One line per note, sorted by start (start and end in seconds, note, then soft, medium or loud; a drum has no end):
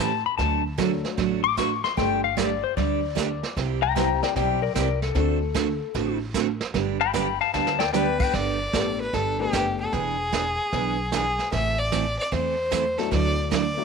0.00 0.23 A2 medium
0.00 0.11 E3 medium
0.00 0.11 A3 medium
0.00 0.11 C#4 medium
0.00 0.11 G4 medium
0.00 0.25 A5 loud
0.26 0.37 B5 medium
0.38 1.02 D2 medium
0.38 0.61 D3 medium
0.38 0.61 F#3 medium
0.38 0.61 A3 medium
0.38 0.61 D4 medium
0.38 0.61 F#4 medium
0.38 0.63 A5 loud
0.38 brush sweep medium
0.38 kick soft
0.38 snare medium
0.78 0.90 D3 medium
0.78 0.90 F#3 medium
0.78 1.39 F#3 medium
0.78 0.90 A3 medium
0.78 1.39 A3 medium
0.78 0.90 D4 medium
0.78 1.39 D4 medium
0.78 0.90 F#4 medium
0.78 1.39 F#4 medium
0.78 1.40 A4 medium
0.78 kick soft
0.78 snare medium
0.78 hi-hat pedal medium
1.05 snare soft
1.17 1.82 A1 medium
1.17 1.40 D3 medium
1.17 1.40 F#3 medium
1.17 1.40 A3 medium
1.17 1.40 D4 medium
1.17 1.40 F#4 medium
1.17 brush sweep medium
1.17 kick soft
1.17 snare soft
1.44 1.57 D6 medium
1.57 1.69 D3 medium
1.57 1.69 F#3 medium
1.57 1.69 A3 medium
1.57 1.70 D4 medium
1.57 1.70 F#4 medium
1.57 1.84 C#6 loud
1.57 kick soft
1.57 snare medium
1.57 hi-hat pedal medium
1.84 1.97 C6 medium
1.84 snare soft
1.97 2.61 G1 medium
1.97 2.19 G3 medium
1.97 2.21 G3 medium
1.97 2.20 A3 medium
1.97 2.21 A3 medium
1.97 2.20 D4 medium
1.97 2.21 D4 medium
1.97 2.20 G4 medium
1.97 2.21 G4 medium
1.97 2.22 A4 medium
1.97 2.23 G5 loud
1.97 brush sweep soft
1.97 kick soft
1.97 snare soft
2.24 2.37 F5 loud
2.37 2.49 G3 medium
2.37 2.49 A3 medium
2.37 2.49 D4 medium
2.37 2.49 G4 medium
2.37 2.63 D5 loud
2.37 kick soft
2.37 snare medium
2.37 hi-hat pedal medium
2.64 2.77 C5 medium
2.77 3.41 D2 medium
2.77 2.99 G3 medium
2.77 2.99 A3 medium
2.77 2.99 D4 medium
2.77 3.00 G4 medium
2.77 3.54 D5 loud
2.77 brush sweep soft
2.77 kick soft
2.77 snare soft
3.15 3.28 G3 medium
3.15 3.28 A3 medium
3.15 3.28 D4 medium
3.15 3.28 G4 medium
3.15 kick soft
3.15 snare medium
3.15 hi-hat pedal medium
3.43 snare soft
3.56 4.20 C2 medium
3.56 3.79 C3 medium
3.56 3.79 G3 medium
3.56 3.79 C4 medium
3.56 3.79 E4 medium
3.56 3.79 G4 medium
3.56 brush sweep medium
3.56 kick soft
3.56 snare soft
3.82 3.94 G5 medium
3.82 3.95 A#5 loud
3.95 4.08 C3 medium
3.95 4.08 G3 medium
3.95 4.57 G3 medium
3.95 4.08 C4 medium
3.95 4.57 C4 medium
3.95 4.08 E4 medium
3.95 4.57 E4 medium
3.95 4.08 G4 medium
3.95 4.57 G4 medium
3.95 4.57 C5 medium
3.95 4.20 G5 medium
3.95 4.21 A#5 loud
3.95 kick soft
3.95 snare medium
3.95 hi-hat pedal medium
4.23 4.35 D5 medium
4.23 4.35 G5 medium
4.23 snare soft
4.36 4.70 B1 medium
4.36 4.58 C3 medium
4.36 4.58 G3 medium
4.36 4.58 C4 medium
4.36 4.59 E4 medium
4.36 4.59 G4 medium
4.36 4.61 D5 medium
4.36 4.62 G5 medium
4.36 brush sweep medium
4.36 kick soft
4.36 snare soft
4.62 4.74 A#4 medium
4.62 4.74 D5 medium
4.75 5.10 C2 medium
4.75 4.87 C3 medium
4.75 4.87 G3 medium
4.75 4.88 C4 medium
4.75 4.88 E4 medium
4.75 4.88 G4 medium
4.75 5.00 A#4 medium
4.75 5.01 D5 loud
4.75 kick soft
4.75 snare medium
4.75 hi-hat pedal medium
5.02 6.18 A4 loud
5.02 snare soft
5.15 5.79 D2 medium
5.15 5.37 D3 medium
5.15 5.39 A3 medium
5.15 5.38 A3 medium
5.15 5.39 C4 medium
5.15 5.38 C4 medium
5.15 5.39 D4 medium
5.15 5.39 F#4 medium
5.15 5.38 F#4 medium
5.15 5.38 A4 medium
5.15 5.39 A4 medium
5.15 brush sweep medium
5.15 kick soft
5.15 snare soft
5.54 5.67 D3 medium
5.54 5.67 A3 medium
5.54 5.67 C4 medium
5.54 5.67 F#4 medium
5.54 5.67 A4 medium
5.54 kick soft
5.54 snare medium
5.54 hi-hat pedal medium
5.94 6.59 A1 medium
5.94 6.17 D3 medium
5.94 6.17 A3 medium
5.94 6.17 C4 medium
5.94 6.17 F#4 medium
5.94 6.17 A4 medium
5.94 brush sweep soft
5.94 kick soft
5.94 snare soft
6.34 6.47 D3 medium
6.34 6.47 A3 medium
6.34 6.47 C4 medium
6.34 6.47 F#4 medium
6.34 6.47 A4 medium
6.34 kick soft
6.34 snare medium
6.34 hi-hat pedal medium
6.61 snare medium
6.74 7.38 G1 medium
6.74 6.97 D3 medium
6.74 6.97 G3 medium
6.74 6.97 B3 medium
6.74 6.97 D4 medium
6.74 6.97 G4 medium
6.74 brush sweep soft
6.74 kick soft
6.74 snare soft
7.01 7.12 G5 medium
7.01 7.13 B5 medium
7.13 7.26 D3 medium
7.13 7.26 G3 medium
7.13 7.26 B3 medium
7.13 7.26 D4 medium
7.13 7.26 G4 medium
7.13 7.38 G5 medium
7.13 7.40 B5 medium
7.13 kick soft
7.13 snare medium
7.13 hi-hat pedal medium
7.41 7.52 F5 medium
7.41 7.53 A5 medium
7.53 8.18 D2 medium
7.53 7.76 D3 medium
7.53 7.76 G3 medium
7.53 7.77 B3 medium
7.53 7.77 D4 medium
7.53 7.77 G4 medium
7.53 7.78 F5 medium
7.53 7.80 A5 medium
7.53 snare soft
7.67 snare medium
7.79 7.91 D5 medium
7.79 7.92 G5 loud
7.79 snare medium
7.93 8.06 D3 medium
7.93 8.34 G3 medium
7.93 8.06 G3 medium
7.93 8.06 B3 medium
7.93 8.34 B3 medium
7.93 8.06 D4 medium
7.93 8.34 D4 medium
7.93 8.06 G4 medium
7.93 8.34 G4 medium
7.93 8.35 B4 loud
7.93 8.34 B4 medium
7.93 8.18 D5 medium
7.93 8.19 G5 loud
7.93 snare medium
7.93 hi-hat pedal medium
8.20 8.33 G5 loud
8.20 kick medium
8.20 crash medium
8.33 8.66 G1 medium
8.33 8.56 G3 medium
8.33 8.56 B3 medium
8.33 8.56 D4 medium
8.33 8.57 A4 medium
8.33 9.00 D5 medium
8.33 brush sweep medium
8.33 kick soft
8.33 snare soft
8.73 9.07 A1 medium
8.73 8.85 G3 medium
8.73 8.97 A3 medium
8.73 8.86 B3 medium
8.73 8.97 B3 medium
8.73 8.85 D4 medium
8.73 8.97 D4 medium
8.73 8.98 G4 medium
8.73 8.86 A4 medium
8.73 8.98 A4 medium
8.73 kick soft
8.73 snare medium
8.73 hi-hat pedal medium
9.00 9.15 B4 medium
9.13 9.47 G1 medium
9.13 9.36 G3 medium
9.13 9.36 B3 medium
9.13 9.36 D4 medium
9.13 9.40 A4 medium
9.13 9.36 A4 medium
9.13 brush sweep soft
9.13 kick soft
9.13 snare soft
9.39 9.90 A3 medium
9.39 9.90 B3 medium
9.39 9.90 D4 medium
9.39 9.77 G4 loud
9.39 9.91 G4 medium
9.39 9.91 B4 medium
9.53 9.87 F#1 medium
9.53 9.65 G3 medium
9.53 9.65 B3 medium
9.53 9.65 D4 medium
9.53 9.65 A4 medium
9.53 kick soft
9.53 snare medium
9.53 hi-hat pedal medium
9.80 9.94 A4 medium
9.93 10.57 E1 medium
9.93 10.15 E3 medium
9.93 10.16 B3 medium
9.93 10.16 D4 medium
9.93 11.12 G#4 loud
9.93 10.16 G#4 medium
9.93 brush sweep soft
9.93 kick soft
9.93 snare soft
10.32 10.44 E3 medium
10.32 10.45 B3 medium
10.32 10.45 D4 medium
10.32 10.45 G#4 medium
10.32 kick soft
10.32 snare medium
10.32 hi-hat pedal medium
10.73 11.37 B1 medium
10.73 10.95 E3 medium
10.73 10.96 B3 medium
10.73 10.96 D4 medium
10.73 10.96 G#4 medium
10.73 brush sweep soft
10.73 kick soft
10.73 snare soft
11.12 11.25 E3 medium
11.12 11.25 B3 medium
11.12 11.25 D4 medium
11.12 11.50 G#4 medium
11.12 11.25 G#4 medium
11.12 kick soft
11.12 snare medium
11.12 hi-hat pedal medium
11.39 snare soft
11.52 12.16 A1 medium
11.52 11.75 E3 medium
11.52 11.75 A3 medium
11.52 11.75 C4 medium
11.52 11.75 E4 medium
11.52 11.75 A4 medium
11.52 11.80 E5 loud
11.52 brush sweep soft
11.52 kick soft
11.52 snare soft
11.78 12.18 D5 loud
11.92 12.04 E3 medium
11.92 12.04 A3 medium
11.92 12.04 C4 medium
11.92 12.04 E4 medium
11.92 12.05 A4 medium
11.92 kick soft
11.92 snare medium
11.92 hi-hat pedal medium
12.18 12.31 D5 loud
12.32 12.96 E2 medium
12.32 12.54 E3 medium
12.32 12.54 A3 medium
12.32 12.55 C4 medium
12.32 12.55 E4 medium
12.32 12.55 A4 medium
12.32 12.99 C5 medium
12.32 brush sweep soft
12.32 kick soft
12.32 snare soft
12.71 12.83 E3 medium
12.71 12.84 A3 medium
12.71 12.84 C4 medium
12.71 12.84 E4 medium
12.71 12.84 A4 medium
12.71 kick soft
12.71 snare medium
12.71 hi-hat pedal medium
12.98 13.49 F#3 medium
12.98 13.49 A3 medium
12.98 13.49 D4 medium
12.98 13.50 E4 medium
12.98 13.50 F#4 medium
12.98 13.11 A4 medium
12.98 snare soft
13.11 13.76 D2 medium
13.11 13.34 D3 medium
13.11 13.34 F#3 medium
13.11 13.34 A3 medium
13.11 13.34 E4 medium
13.11 13.35 F#4 medium
13.11 13.49 D5 loud
13.11 brush sweep soft
13.11 kick soft
13.11 snare soft
13.51 13.63 D3 medium
13.51 13.63 F#3 medium
13.51 13.64 A3 medium
13.51 13.64 E4 medium
13.51 13.64 F#4 medium
13.51 13.85 D5 loud
13.51 kick soft
13.51 snare medium
13.51 hi-hat pedal soft
13.77 13.85 F#3 medium
13.77 13.85 A3 medium
13.77 13.85 D4 medium
13.77 13.85 E4 medium
13.77 13.85 F#4 medium